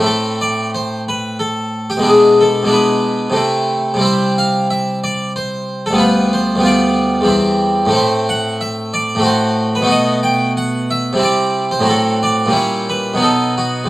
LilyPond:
<<
  \new Staff \with { instrumentName = "Harpsichord" } { \time 3/4 \key a \minor \tempo 4 = 91 a'8 d''8 c''8 b'8 a'8. g'16 | gis'8 a'8 b'4.~ b'16 r16 | c''8 f''8 e''8 d''8 c''8. a'16 | b'8 c''8 d''4.~ d''16 r16 |
\key b \phrygian c''8 fis''8 e''8 d''8 c''8. b'16 | dis''8 g''8 fis''8 e''8 d''8. c''16 | a'8 d''8 cis''8 b'8 a'8 fis'8 | }
  \new Staff \with { instrumentName = "Harpsichord" } { \time 3/4 \key a \minor <a, a c' e'>2. | <b, gis d' e'>4 <b, gis d' e'>4 <c a c' e'>4 | <c g c' e'>2. | <d, g b f'>4 <d, g b f'>4 <e, g c' e'>4 |
\key b \phrygian <a, a c' e'>2 <a, a c' fis'>4 | <b, a b fis'>2 <c g c' e'>4 | <a, fis c' fis'>4 <ais, g cis' e'>4 <b, fis b dis'>4 | }
>>